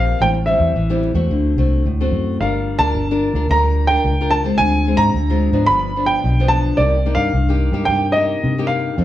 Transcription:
0.00 0.13 A#1 loud
0.00 0.18 A#2 medium
0.00 0.17 A#3 medium
0.00 0.18 C4 medium
0.00 0.18 G4 medium
0.00 0.19 F5 loud
0.21 0.56 A1 medium
0.21 0.73 A2 medium
0.21 0.37 G3 soft
0.21 0.37 C4 medium
0.21 0.37 E4 medium
0.21 0.28 G5 medium
0.46 0.73 G3 medium
0.46 0.74 C4 medium
0.46 0.74 E4 medium
0.46 0.98 E5 medium
0.60 0.72 E2 medium
0.76 1.11 A1 medium
0.76 1.28 E3 medium
0.90 1.13 G3 medium
0.90 1.13 C4 medium
0.90 1.13 E4 medium
1.14 1.27 E2 medium
1.14 1.53 A3 medium
1.14 1.53 C4 medium
1.14 1.53 F#4 medium
1.30 1.54 D2 medium
1.30 1.83 D3 medium
1.56 1.82 C2 medium
1.56 1.84 A3 medium
1.56 1.84 C4 medium
1.56 1.84 F#4 medium
1.85 2.10 D2 medium
1.85 2.38 A2 medium
2.01 2.37 A3 medium
2.01 2.37 C4 medium
2.01 2.37 F#4 medium
2.12 2.37 F#2 medium
2.40 2.75 G1 medium
2.40 2.93 G3 medium
2.40 2.78 D4 soft
2.40 2.78 F4 medium
2.40 2.78 A#4 medium
2.40 2.83 F5 medium
2.79 2.92 D2 medium
2.79 3.04 D4 medium
2.79 3.04 F4 medium
2.79 3.04 A#4 medium
2.79 3.45 A5 loud
2.95 3.30 G1 medium
2.95 3.48 D3 medium
3.11 3.33 D4 medium
3.11 3.33 F4 medium
3.11 3.33 A#4 medium
3.34 3.47 D2 medium
3.34 3.45 D4 medium
3.34 3.45 F4 medium
3.34 3.46 A#4 medium
3.50 3.97 D2 medium
3.50 4.03 G3 medium
3.50 3.88 D4 medium
3.50 3.88 F4 medium
3.50 3.88 A#4 medium
3.50 3.89 A#5 medium
3.87 4.14 D4 medium
3.87 4.14 F4 medium
3.87 4.14 A#4 medium
3.87 4.32 G5 loud
4.05 4.51 C#2 medium
4.21 4.43 D4 medium
4.21 4.43 F4 medium
4.21 4.43 A#4 medium
4.31 4.60 A5 loud
4.44 4.86 G#3 medium
4.44 4.86 C4 medium
4.44 4.87 F4 medium
4.58 4.95 D2 loud
4.58 5.13 D3 medium
4.58 5.01 G#5 loud
4.87 5.13 G#3 medium
4.87 5.13 C4 medium
4.87 5.13 F4 medium
4.97 5.11 G#2 medium
4.97 5.70 A#5 loud
5.14 5.49 D2 medium
5.14 5.67 D3 medium
5.30 5.52 G#3 medium
5.30 5.52 C4 medium
5.30 5.53 F4 medium
5.52 5.66 G#2 medium
5.52 5.91 F3 medium
5.52 5.91 B3 medium
5.52 5.92 D4 medium
5.66 6.16 G1 medium
5.66 6.22 G2 medium
5.66 6.06 B5 loud
5.96 6.33 F3 medium
5.96 6.34 B3 soft
5.96 6.34 D4 medium
6.06 6.51 G5 medium
6.24 6.71 B1 loud
6.24 6.76 D3 medium
6.40 6.76 F3 medium
6.40 6.76 B3 medium
6.40 6.76 D4 medium
6.48 6.78 A5 loud
6.77 7.13 C2 medium
6.77 7.31 C3 medium
6.77 6.95 A#3 medium
6.77 6.96 D#4 medium
6.77 6.96 G4 medium
6.77 7.20 D5 medium
7.06 7.32 A#3 medium
7.06 7.32 D#4 medium
7.06 7.32 G4 medium
7.15 7.30 G2 loud
7.15 7.88 F5 loud
7.33 7.68 C2 loud
7.33 7.86 G2 medium
7.49 7.71 A#3 medium
7.49 7.71 D#4 medium
7.49 7.72 G4 medium
7.72 7.85 G2 medium
7.72 7.83 A#3 medium
7.72 7.84 D#4 medium
7.72 7.84 G4 medium
7.85 8.35 G2 medium
7.85 8.12 G5 medium
7.89 8.41 C3 medium
7.89 8.05 A#3 medium
7.89 8.06 D#4 medium
7.89 8.06 G4 medium
8.12 8.53 A#3 medium
8.12 8.53 D#4 soft
8.12 8.65 D#5 medium
8.17 8.53 G4 medium
8.44 8.96 G2 medium
8.44 8.90 C3 medium
8.58 8.94 A#3 medium
8.58 8.95 D#4 medium
8.58 8.95 G4 medium
8.67 9.04 F5 medium
8.98 9.04 F2 medium
8.98 9.04 F3 medium
8.98 9.04 C4 soft
8.98 9.04 D#4 medium
8.98 9.04 A4 medium

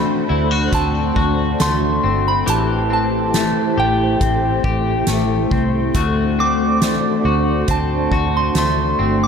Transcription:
0.00 1.59 A3 medium
0.00 9.28 A3 medium
0.00 0.73 C4 medium
0.00 2.43 D4 medium
0.00 0.29 F#4 medium
0.00 2.43 F#4 medium
0.00 2.44 C5 medium
0.00 0.78 B5 medium
0.29 0.68 D2 medium
0.29 0.51 E4 medium
0.51 1.15 F#4 medium
0.73 1.11 D2 medium
0.73 2.03 C4 medium
0.73 1.63 A5 medium
0.73 kick medium
0.73 closed hi-hat medium
1.16 1.54 D2 medium
1.16 2.46 F#4 medium
1.16 kick medium
1.60 1.99 D2 medium
1.60 3.34 A3 medium
1.60 2.28 C6 medium
1.60 snare loud
1.60 closed hi-hat medium
2.03 2.42 G1 medium
2.03 2.90 C4 medium
2.28 2.49 B5 medium
2.46 3.52 A1 medium
2.46 5.94 E3 medium
2.46 5.91 E4 medium
2.46 3.76 G4 medium
2.46 5.92 G4 medium
2.46 5.92 C5 medium
2.46 2.92 A5 medium
2.46 closed hi-hat medium
2.90 4.21 C4 medium
2.90 3.81 A5 medium
3.34 5.07 A3 medium
3.34 snare medium
3.34 closed hi-hat medium
3.77 4.16 A1 medium
3.77 4.63 G4 medium
3.77 5.48 G5 medium
4.21 4.59 A1 medium
4.21 5.52 C4 medium
4.21 kick medium
4.21 closed hi-hat medium
4.64 5.03 A1 medium
4.64 5.95 G4 medium
4.64 kick medium
5.07 5.46 A1 medium
5.07 5.95 A3 medium
5.07 snare medium
5.07 closed hi-hat medium
5.51 5.90 C2 medium
5.51 6.38 C4 medium
5.51 kick medium
5.95 7.00 D2 medium
5.95 6.81 A3 medium
5.95 9.28 D4 medium
5.95 9.28 F#4 medium
5.95 7.24 F#4 medium
5.95 9.28 C5 medium
5.95 kick loud
5.95 closed hi-hat medium
6.39 7.69 C4 medium
6.39 7.73 D6 medium
6.82 8.55 A3 soft
6.82 snare medium
6.82 closed hi-hat medium
7.25 7.63 D2 medium
7.25 8.11 F#4 medium
7.68 8.07 D2 medium
7.68 8.98 C4 medium
7.68 8.37 A5 medium
7.68 kick medium
7.68 closed hi-hat medium
8.11 8.50 D2 medium
8.11 9.28 F#4 medium
8.11 kick medium
8.37 8.57 C6 medium
8.55 8.93 D2 medium
8.55 9.28 A3 medium
8.55 9.24 C6 medium
8.55 snare loud
8.55 closed hi-hat medium
8.99 9.28 G1 medium
8.99 9.28 C4 medium
9.23 9.28 D6 medium

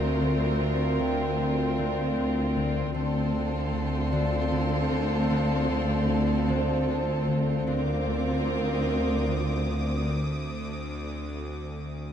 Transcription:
0.00 2.90 D2 soft
0.00 2.91 D2 soft
0.00 2.91 D2 medium
0.00 0.20 D3 soft
0.00 2.90 C4 soft
0.00 2.90 F4 soft
0.00 2.94 A#4 soft
0.00 1.34 E5 soft
0.00 2.52 A#5 soft
0.00 2.51 C6 soft
0.00 0.96 C#6 soft
0.21 0.59 D3 soft
0.61 0.99 D3 soft
0.99 1.37 D3 soft
0.99 3.30 G5 soft
1.39 1.77 D3 soft
1.78 2.15 D3 medium
2.16 2.54 D3 soft
2.56 2.93 D3 soft
2.92 7.64 D2 medium
2.92 7.64 D2 soft
2.92 7.64 D2 medium
2.92 3.33 D3 medium
2.92 7.64 C4 soft
2.92 7.64 F4 soft
2.92 7.64 A4 soft
2.92 7.23 A5 soft
2.92 6.45 C6 soft
3.34 3.72 D3 soft
3.73 4.11 D3 soft
4.12 4.50 D3 medium
4.12 6.45 D5 soft
4.51 4.90 D3 soft
4.91 5.29 D3 soft
5.30 5.69 D3 medium
5.70 6.08 D3 soft
6.09 6.47 D3 soft
6.49 6.87 D3 medium
6.49 8.84 C4 soft
6.49 8.84 C5 soft
6.88 7.26 D3 soft
7.27 7.66 D3 soft
7.66 10.08 D2 medium
7.66 12.13 D2 medium
7.66 8.06 D3 medium
7.66 10.08 C4 medium
7.66 10.08 F4 soft
7.66 10.08 A#4 soft
7.66 12.13 D6 soft
8.07 8.46 D3 soft
8.46 8.86 D3 soft
8.46 12.13 D#6 soft
8.87 9.27 D3 soft
9.28 9.68 D3 soft
9.69 12.13 D3 soft

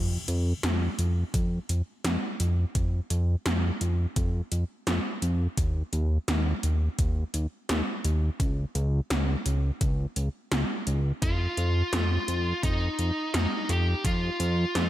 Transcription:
0.00 0.18 F2 medium
0.28 0.53 F2 loud
0.28 closed hi-hat medium
0.63 0.89 F2 medium
0.63 snare loud
0.63 closed hi-hat medium
0.99 1.24 F2 medium
0.99 closed hi-hat medium
1.34 1.59 F2 medium
1.34 kick loud
1.34 closed hi-hat medium
1.69 1.82 F2 medium
1.69 closed hi-hat medium
2.05 2.17 F2 medium
2.05 snare loud
2.05 closed hi-hat medium
2.40 2.65 F2 medium
2.40 closed hi-hat medium
2.75 3.00 F2 medium
2.75 kick loud
2.75 closed hi-hat medium
3.10 3.36 F2 loud
3.10 closed hi-hat medium
3.46 3.71 F2 loud
3.46 snare loud
3.46 closed hi-hat loud
3.81 4.06 F2 medium
3.81 closed hi-hat medium
4.16 4.42 F2 loud
4.16 kick loud
4.16 closed hi-hat medium
4.52 4.64 F2 medium
4.52 closed hi-hat medium
4.87 5.00 F2 medium
4.87 snare loud
4.87 closed hi-hat medium
5.22 5.48 F2 medium
5.22 closed hi-hat medium
5.57 5.83 D#2 medium
5.57 kick loud
5.57 closed hi-hat medium
5.93 6.18 D#2 loud
5.93 closed hi-hat medium
6.28 6.53 D#2 medium
6.28 snare loud
6.28 closed hi-hat medium
6.63 6.89 D#2 medium
6.63 closed hi-hat medium
6.99 7.24 D#2 loud
6.99 kick loud
6.99 closed hi-hat medium
7.34 7.47 D#2 medium
7.34 closed hi-hat medium
7.69 7.82 D#2 medium
7.69 snare loud
7.69 closed hi-hat medium
8.05 8.30 D#2 medium
8.05 closed hi-hat medium
8.40 8.65 C#2 medium
8.40 kick loud
8.40 closed hi-hat medium
8.75 9.00 C#2 loud
8.75 closed hi-hat medium
9.10 9.36 C#2 medium
9.10 snare loud
9.10 closed hi-hat medium
9.46 9.71 C#2 medium
9.46 closed hi-hat medium
9.81 10.06 C#2 loud
9.81 kick loud
9.81 closed hi-hat medium
10.16 10.29 C#2 medium
10.16 closed hi-hat medium
10.52 10.64 C#2 medium
10.52 snare loud
10.52 closed hi-hat medium
10.87 11.12 C#2 medium
10.87 closed hi-hat medium
11.22 11.48 F2 medium
11.22 12.63 F4 medium
11.22 kick loud
11.22 closed hi-hat medium
11.57 11.83 F2 loud
11.57 closed hi-hat medium
11.93 12.18 F2 medium
11.93 snare loud
11.93 closed hi-hat medium
12.28 12.53 F2 medium
12.28 closed hi-hat medium
12.63 12.89 F2 loud
12.63 13.33 D#4 medium
12.63 kick loud
12.63 closed hi-hat medium
12.99 13.11 F2 medium
12.99 closed hi-hat medium
13.34 13.47 F2 medium
13.34 13.70 D#4 medium
13.34 snare loud
13.34 closed hi-hat medium
13.69 13.95 F2 medium
13.69 14.06 G4 medium
13.69 closed hi-hat medium
14.05 14.30 F2 medium
14.05 14.89 F4 loud
14.05 kick loud
14.05 closed hi-hat medium
14.40 14.65 F2 loud
14.40 closed hi-hat medium
14.75 14.89 F2 medium
14.75 snare loud
14.75 closed hi-hat medium

